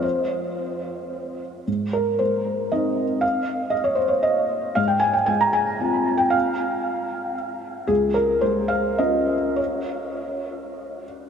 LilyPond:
\new Staff \with { instrumentName = "Felt piano" } { \time 3/4 \key f \minor \tempo 4 = 114 << { c''2~ c''8 r8 | r8 bes'8 c''4 ees''4 | f''4 ees''16 des''16 c''16 des''16 ees''4 | f''16 g''16 aes''16 g''16 aes''16 bes''16 aes''4~ aes''16 g''16 |
f''2 r4 | aes'8 bes'8 c''8 f''8 ees''4 | des''2~ des''8 r8 | } \\ { <c' f'>2. | aes,4 aes4 <c' ees'>4~ | <c' ees'>2. | aes,4 aes4 <c' f'>4~ |
<c' f'>2. | des,4 aes4 <des' f'>4~ | <des' f'>2. | } >> }